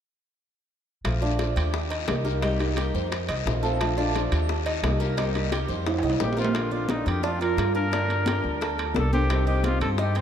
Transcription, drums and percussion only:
1.05 high bongo, high timbale, long guiro
1.39 high bongo, high timbale, short guiro
1.57 high timbale, short guiro
1.74 high bongo, long guiro
1.92 high timbale
2.08 high bongo, low bongo, high timbale, low timbale, short guiro
2.26 short guiro
2.42 high bongo, high timbale, long guiro
2.60 high bongo, high timbale
2.77 high bongo, high timbale, short guiro
2.95 short guiro
3.12 high bongo, high timbale, long guiro
3.29 high bongo, high timbale
3.47 high bongo, low bongo, short guiro
3.64 high bongo, short guiro
3.81 high bongo, high timbale, long guiro
4.15 high bongo, high timbale, short guiro
4.32 high timbale, short guiro
4.49 high bongo, long guiro
4.66 high timbale
4.84 high bongo, low bongo, high timbale, low timbale, short guiro
5.01 short guiro
5.18 high bongo, high timbale, long guiro
5.35 high bongo, high timbale
5.52 high bongo, high timbale, short guiro
5.69 short guiro
5.86 high bongo, high timbale, long guiro
5.98 high timbale
6.03 high bongo
6.10 high timbale
6.20 high bongo, low bongo, low timbale, short guiro
6.33 low timbale
6.37 high bongo, short guiro
6.45 low timbale
6.55 high bongo, high conga, high timbale
6.71 high conga
6.89 high bongo, high conga, high timbale
7.06 high conga, high timbale
7.23 high bongo, high conga
7.39 high conga, high timbale
7.57 high bongo, low bongo, high conga, high timbale
7.92 high bongo, high conga, high timbale
8.08 high bongo, high conga, high timbale
8.26 high bongo, high conga, high timbale
8.44 high conga
8.61 high bongo, high conga, high timbale
8.78 high bongo, high conga, high timbale
8.94 high bongo, low bongo, high conga
9.13 high bongo, high conga
9.30 high bongo, high conga, high timbale
9.48 high conga
9.64 high bongo, high conga, high timbale
9.81 high conga, high timbale
9.98 high bongo, high conga
10.16 high conga, high timbale

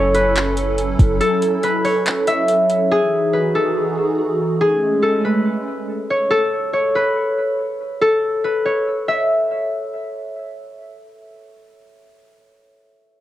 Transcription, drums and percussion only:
0.15 closed hi-hat
0.36 clap, closed hi-hat
0.57 closed hi-hat
0.78 closed hi-hat
0.99 kick, closed hi-hat
1.21 closed hi-hat
1.42 closed hi-hat
1.63 closed hi-hat
1.85 open hi-hat
2.06 clap, closed hi-hat
2.27 closed hi-hat
2.48 closed hi-hat
2.70 closed hi-hat

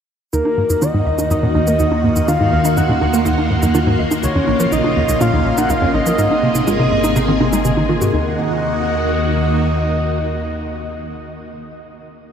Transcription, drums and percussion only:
0.33 shaker
0.45 low bongo
0.70 shaker
0.82 low bongo, shaker
1.19 low bongo, shaker
1.31 shaker
1.55 low bongo
1.67 shaker
1.79 shaker
1.92 low bongo
2.16 shaker
2.28 low bongo, shaker
2.65 low bongo, shaker
2.77 shaker
3.01 low bongo
3.14 shaker
3.26 shaker
3.38 low bongo
3.62 shaker
3.75 low bongo, shaker
4.11 low bongo, shaker
4.23 shaker
4.48 low bongo
4.60 shaker
4.72 shaker
4.84 low bongo
5.09 shaker
5.21 low bongo, shaker
5.58 low bongo, shaker
5.70 shaker
5.94 low bongo
6.06 shaker
6.19 shaker
6.31 low bongo
6.55 shaker
6.67 low bongo, shaker
7.04 low bongo, shaker
7.16 shaker
7.41 low bongo
7.53 shaker
7.65 shaker
7.77 low bongo
8.02 shaker

